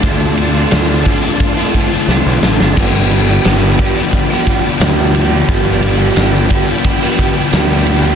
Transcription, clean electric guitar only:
X:1
M:4/4
L:1/16
Q:1/4=88
K:Gmix
V:1 name="Clean electric guitar"
[D,A,CF]3 [A,CF] [D,A,CF]2 [D,A,CF]3 [A,CF] [D,A,CF]2 [D,A,CF]3 [A,CF] | [G,,D,F,G,B,G]3 [F,G,B,G] [G,,D,F,G,B,G]2 [F,G,B,G]3 [F,G,B,G] [F,G,B,G]2 [G,,D,F,G,B,G]3 [F,G,B,G] | [G,,D,F,G,B,G]3 [F,G,B,G] [G,,D,F,G,B,G]2 [F,G,B,G]3 [F,G,B,G] [F,G,B,G]2 [G,,D,F,G,B,G]3 [F,G,B,G] |]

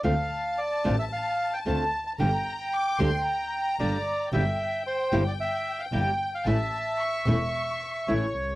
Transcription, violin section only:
X:1
M:4/4
L:1/8
Q:1/4=112
K:Dm
V:1 name="Violin section"
a8 | b2 d' c' b4 | g8 | a2 ^c' c'4 z |]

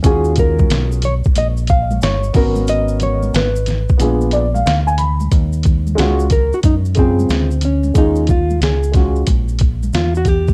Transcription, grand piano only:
X:1
M:4/4
L:1/16
Q:"Swing 16ths" 1/4=91
K:Ebm
V:1 name="Grand piano"
[DFGA]6 z8 [CDGB]2- | [CDGB]4 z4 [C=DFA]2 =d f f a c'2 | [K:Ebdor] z4 [A,DFG]2 z4 [D,A,FA]2 z4 | [A,DFA]2 z4 [A,DFG]2 z8 |]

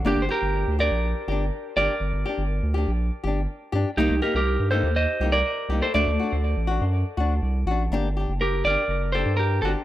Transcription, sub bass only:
X:1
M:4/4
L:1/16
Q:1/4=122
K:Gm
V:1 name="Sub bass" clef=bass
G,,, G,,, z G,,,2 D,,2 B,,,2 z G,,,2 z2 G,,, z | G,,, G,,, z G,,,2 D,,2 B,,,2 z G,,,2 z2 G,, z | C,, C,, z C,,2 G,,2 E,,2 z C,,2 z2 C,, z | D,, D,, z D,,2 A,,,2 ^F,,2 z D,,2 C,,2 A,,,2 |
G,,,3 ^F,,,3 G,,, z F,,,3 G,,3 G,,, z |]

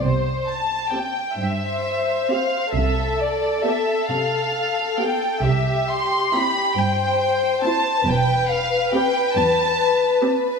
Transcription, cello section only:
X:1
M:6/8
L:1/8
Q:3/8=45
K:C
V:1 name="Cello section" clef=bass
C,3 G,,3 | C,3 C,3 | C,3 G,,3 | E,,3 E,,3 |]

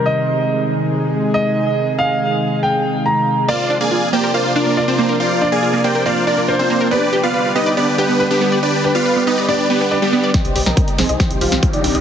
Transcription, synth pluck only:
X:1
M:4/4
L:1/16
Q:1/4=140
K:Cm
V:1 name="Synth pluck"
z16 | z16 | B, z D B, F z B, B B, z D B, F z B, B | z2 D B, F B, B, B B, z D B, F z B, B |
=B, z G B, =B z B, d B, z G B, B z B, d | z2 G =B, =B B, B, d B, z G B, B z B, d | C z G C c z C e C z G C c z C e |]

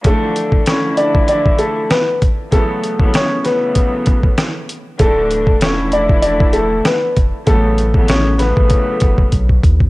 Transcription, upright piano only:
X:1
M:4/4
L:1/8
Q:"Swing 16ths" 1/4=97
K:Dlyd
V:1 name="Upright piano"
[A,A]2 [Cc] [Dd] [Dd] [A,A] [B,B] z | [A,A]2 [Cc] [B,B]3 z2 | [A,A]2 [Cc] [Dd] [Dd] [A,A] [B,B] z | [A,A]2 [Cc] [B,B]3 z2 |]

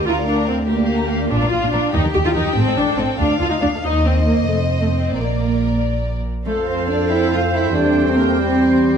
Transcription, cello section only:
X:1
M:6/8
L:1/16
Q:3/8=94
K:Bb
V:1 name="Cello section" clef=bass
D,,12 | B,, B,, B,, B,, B,, z E, E, E, E, E, E, | A,, A,, A,, A,, A,, z D,, D,, D,, D,, D,, D,, | E,,6 F,,6 |
B,,8- B,,2 z2 | [K:F] A,2 C2 D2 E2 F2 E2 | D3 C B,2 C6 |]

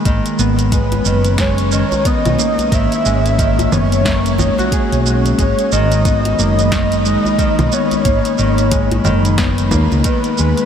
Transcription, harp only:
X:1
M:4/4
L:1/16
Q:"Swing 16ths" 1/4=90
K:G#m
V:1 name="Harp" clef=bass
D, z B, z G,2 D, z G,2 D, z B, z A,2 | D, z G,2 D, z B, z A, z D F G z G, z | G,2 D, z B, z A,2 D, z G,2 D, z B, z | A,2 D, z G,2 D, z B, z A,2 D, z G,2 |]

